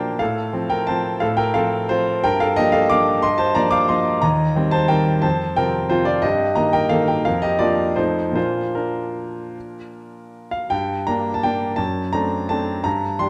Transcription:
Already playing: A#2 F3 A#3 D4 A#4 C5 F5 G5 A5
0.19 A2 A4 F5
0.53 F3 C4
0.70 A#4 G5
0.87 F3 C4 C5 A5
1.20 A2 A4 F5
1.37 A#4 G5
1.54 F3 C4 A4 F5
1.89 F3 C4 F4 C5
2.24 G2 A#4 G5
2.40 A4 F5
2.56 F3 A#3 D4 G4 D#5
2.72 A4 F5
2.90 F3 A#3 D4 F5 D6
3.22 G2 D#5 C6
3.38 C5 A5
3.55 F3 A#3 D4 D5 A#5
3.71 F5 D6
3.88 F3 A#3 D4 D#5 C6
4.22 D#2 D#5 A#5
4.55 D#3 G3 C4
4.71 C5 A5
4.88 D#3 G3 C4 A#4 G5
5.22 F2 C5 A5
5.56 C3 F3 C4 A#4 G5
5.90 C3 F3 C4 F4 C5
6.05 F4 D5
6.22 G2 G4 D#5
6.55 D#3 A#3 D#5 A#5
6.73 A#4 G5
6.89 D#3 A#3 A4 F5
7.08 A#4 G5
7.25 F2 A#4 F5
7.42 G4 D#5
7.59 F3 A#3 D4 F4 D5
7.96 F2 F3 A3 D#4 C5
8.32 A#2 F3 A#3 D4 C5
8.36 F4
8.75 D4 A#4
10.51 F5
10.70 G2 G5
11.07 A#3 D4 A#5
11.34 A5
11.43 A#3 D4 G5
11.76 F#2 A5
12.13 A3 C4 D4 A#5
12.49 A3 C4 D4 A5
12.84 G2 A#5
13.19 G3 D4 G4 C6

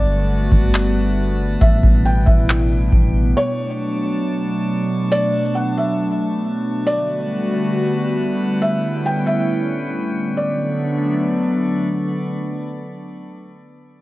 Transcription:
Already playing: G1 D3 G3 A3 B3 D4 F#4 B4 D5 F#5 A5
0.52 G1, kick
0.74 clap
1.61 A1 B2 E4 E5 G5, kick
1.83 A1, kick
2.05 G5
2.26 A1 E5, kick
2.49 clap
2.92 A1, kick
3.36 B2 F#3 A3 D4 C#5 A5 C#6
5.12 D5
5.55 F#5
5.77 E5
6.87 D3 G3 B3 D4 F#4 B4 D5 F#5
8.62 A2 C#4 E4 E5 G5
9.06 G5
9.26 E5
10.37 D3 F#3 A3 B3 D4 A4 D5 C#6

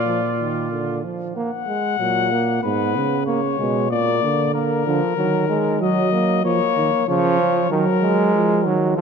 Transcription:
Already playing: A#2 F4 D5
0.07 F3
0.39 D#3
0.71 D3
1.04 F3
1.36 A#3 F#5
1.68 G#3
1.99 A#2 F#3
2.31 A#3
2.62 G#2 B3 B4
2.95 C#3
3.26 A#3 C#5
3.58 B2 G#3
3.91 A#2 A#3 D5
4.23 D3
4.54 A#3 A#4
4.86 D3 F3
5.18 D#3 F#3
5.49 G#3
5.81 F#3 D#5
6.12 A#3
6.44 F3 A#3 C#5
6.76 D#3
7.08 C#3 F3 C#5
7.40 F3
7.71 D#3 F#3 A#4
8.02 G#3
8.35 F3
8.65 D#3 F#3
8.97 F3

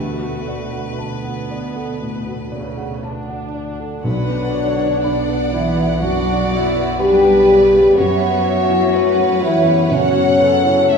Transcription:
Already playing: D2 B2 A3 F#4 B4
0.21 F#4
0.48 D5
0.73 F#5
0.99 B3 A5
1.25 F#5
1.51 D5
1.76 A4
2.00 A2
2.27 F#4
2.52 C#3 D5
2.77 F#5
3.03 D4 A5
3.29 F#5
3.54 D5
3.80 A4
4.03 B1 B2 D3 F#3 D4 B4 D5 F#5
4.29 B3
4.53 B4 C#5
4.79 B4
5.03 B3 D5 F#5 B5
5.29 B4
5.52 E3 B3 E4 D5 E5
5.77 B4
6.00 F#2 F#3 B3 D4 F#4 D5 F#5
6.26 B3
6.51 E4 D5
6.76 B4
6.98 G3 D4 G4 B4 D5 G5 B5
7.22 B4
7.47 C#3 D5
7.72 B4
7.96 F#2 F#3 B3 C#4 F#4 B4 C#5 E5 F#5
8.21 B3
8.45 B4 E5
8.70 E4
8.94 A3 B4 C#5 E5 F#5
9.19 B4
9.42 E3 G3 E4 E5
9.66 B3
9.91 C#3 F#3 C#4 F#4 C#5 F#5
10.16 B3
10.40 A4 B4
10.65 E4
10.88 A3 C#5 E5

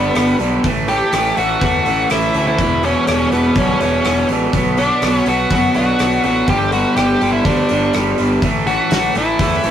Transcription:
Already playing: G2 D3 G3 B3 D4
0.15 G1 G2 D3 G3, cross-stick, open hi-hat
0.39 B1 G2 D3 G3 B3, open hi-hat
0.64 A1 A2 E3 A3, kick, open hi-hat
0.88 A2 E3 A3 G4, open hi-hat
1.13 A1 A2 E3 A3, cross-stick, open hi-hat
1.37 A1 A2 E3 A3 F#4, open hi-hat
1.61 E2 A2 E3 A3, kick, open hi-hat
1.85 A1 A2 E3 A3 C#4, open hi-hat
2.10 A1 A2 E3 A3 E4, cross-stick, open hi-hat
2.34 D2 A2 E3 A3, open hi-hat
2.47 E4
2.58 E1 E2 B2 E3, kick, open hi-hat
2.83 E2 B2 E3 C#4, open hi-hat
3.07 E1 E2 B2 E3 G3 C#4, cross-stick, open hi-hat
3.32 E1 E2 B2 E3 B3, open hi-hat
3.55 B1 E2 B2 E3 G3 C#4, kick, open hi-hat
3.80 E1 E2 B2 E3 B3, open hi-hat
4.04 E1 E2 B2 E3, cross-stick, open hi-hat
4.29 A1 E2 B2 E3 G3, open hi-hat
4.53 B1 B2 F#3 B3, kick, open hi-hat
4.77 B2 F#3 B3 D4, open hi-hat
5.01 B1 B2 F#3 B3, cross-stick, open hi-hat
5.15 C#4
5.26 B1 B2 F#3 B3 F#4, open hi-hat
5.50 F#2 B2 F#3 B3, kick, open hi-hat
5.74 B1 B2 F#3 B3 D4 F#4, open hi-hat
5.99 B1 B2 F#3 B3, cross-stick, open hi-hat
6.24 A1 B2 F#3 B3 F#4, open hi-hat
6.48 G1 G2 D3 G3 G4, kick, open hi-hat
6.72 G2 D3 G3 B3 F#4, open hi-hat
6.96 G1 G2 D3 G3 B3 G4, cross-stick, open hi-hat
7.21 G1 G2 D3 G3, open hi-hat
7.33 E4
7.45 D2 G2 D3 G3 B3 D4, kick, open hi-hat
7.69 G1 G2 D3 G3 D4, open hi-hat
7.93 G1 G2 D3 G3, cross-stick, open hi-hat
8.18 G1 G2 D3 G3 B3, open hi-hat
8.42 A1 A2 E3 A3, kick, open hi-hat
8.67 A2 E3 A3 F#4, open hi-hat
8.91 A1 A2 E3 A3, snare, open hi-hat
9.15 A1 A2 E3 A3 E4, open hi-hat
9.39 E2 A2 E3 A3, kick, open hi-hat
9.64 A1 A2 E3 A3 C#4, open hi-hat

